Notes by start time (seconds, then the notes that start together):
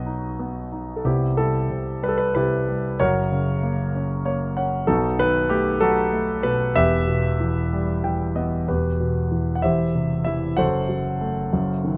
Already playing: B1 B2 F#3 B3 F#4 B4 D#5
0.06 D#4
0.39 B3
0.72 D#4
0.96 A4
1.04 C2 C3 B3 E4 G4
1.37 G3 E4 A4
1.70 C3
2.03 G3 B4
2.08 A4
2.18 B4
2.35 C3 E4 G4 B4
2.68 G3
3.00 F#1 F#2 F#4 A#4 C#5
3.32 C#3
3.63 A#3
3.95 C#4
4.25 A#3 C#5
4.57 C#4 F#5
4.87 B1 B2 D#4 F#4 A4
5.19 D#3 B4
5.49 A3 G4
5.81 F#3 D#4 F#4 A4
6.12 A3
6.43 B2 B4
6.75 E1 E2 G4 B4 E5
7.07 B2
7.40 E3
7.73 G3
8.04 E3 G5
8.36 B3 D#5
8.68 E1 E2 B3 F#4 G4 B4
9.00 B2
9.32 E3
9.55 F#5
9.62 E1 E2 E4 G4 C5 E5
9.95 C3
10.25 E3 E4 E5
10.57 F#1 F#2 F#4 A4 C5 F#5
10.89 F#3
11.21 A3
11.53 F#1 F#2
11.84 D#3